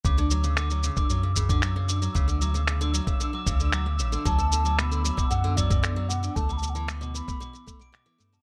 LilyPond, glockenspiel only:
\new Staff \with { instrumentName = "Glockenspiel" } { \time 4/4 \key d \major \tempo 4 = 114 d'''16 r8. d'''16 r8 d'''16 r8. d'''16 r8 d'''16 r16 | r8 d'''16 r8 d'''16 r8. d'''16 r8 d'''16 r8. | d'''16 r8 d'''16 r8. d'''16 r8 d'''16 r8. d'''16 r16 | r16 d'''16 r8. d'''16 r8 d'''16 r8 d''''16 d'''16 d'''16 r16 a''16 | }